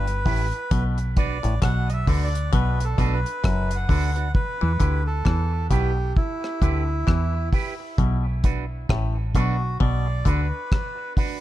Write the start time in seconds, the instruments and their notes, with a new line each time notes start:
Already playing: fingered electric bass G1, melodica B4
0.07 closed hi-hat
0.25 fingered electric bass A1, clav A2, clean electric guitar E4 G4 B4, kick, open hi-hat
0.52 muted clean electric guitar stroke, closed hi-hat
0.71 fingered electric bass B1, clav B2, kick, closed hi-hat
0.98 closed hi-hat
1.17 clean electric guitar D4 F#4 B4, melodica D5, kick, closed hi-hat
1.43 fingered electric bass A1, clav A2, closed hi-hat
1.62 fingered electric bass B1, clav B2, melodica F#5, kick, cross-stick, closed hi-hat
1.89 melodica D#5 E5, closed hi-hat
2.07 fingered electric bass D2, clav D3, clean electric guitar D4 F#4 B4, kick, open hi-hat
2.24 melodica D5
2.35 closed hi-hat
2.53 fingered electric bass B1, clav B2, melodica B4, kick, closed hi-hat
2.80 melodica A4, closed hi-hat
2.98 fingered electric bass B1, clav B2, clean electric guitar D4 F#4 B4, kick, closed hi-hat
3.14 melodica B4
3.26 closed hi-hat
3.44 fingered electric bass F#1, clav F#2, kick, cross-stick, closed hi-hat
3.71 closed hi-hat
3.75 melodica F#5
3.89 fingered electric bass D2, clav D3, clean electric guitar D4 F#4 B4, kick, open hi-hat
4.16 clean electric guitar D4 F#4 B4, closed hi-hat
4.35 melodica B4, kick
4.61 fingered electric bass E2, clav E3
4.80 fingered electric bass D2, clav D3, clean electric guitar E4 G4 B4, kick, closed hi-hat
5.07 melodica A4
5.25 fingered electric bass E2, clav E3, kick, cross-stick
5.70 fingered electric bass B1, clav B2, clean electric guitar E4 G4 B4, melodica G4, kick, closed hi-hat
6.17 melodica E4, kick
6.44 cross-stick
6.62 fingered electric bass D2, clav D3, clean electric guitar E4 G4 B4, kick, closed hi-hat
7.07 fingered electric bass E2, clav E3, kick, cross-stick
7.52 clean electric guitar E4 G4 B4, kick, open hi-hat
7.80 muted clean electric guitar stroke
7.98 fingered electric bass B1, clav B2, kick, hi-hat pedal
8.44 clean electric guitar D4 F#4 B4, kick, closed hi-hat
8.89 fingered electric bass A1, clav A2, kick, cross-stick
9.35 fingered electric bass B1, clav B2, clean electric guitar D4 F#4 B4, melodica F#4, kick, closed hi-hat
9.80 fingered electric bass B1, clav B2, melodica D5, kick
10.25 fingered electric bass D2, clav D3, clean electric guitar D4 F#4 B4, melodica B4, kick, closed hi-hat
10.72 kick, cross-stick
11.17 clean electric guitar D4 F#4 B4, kick, open hi-hat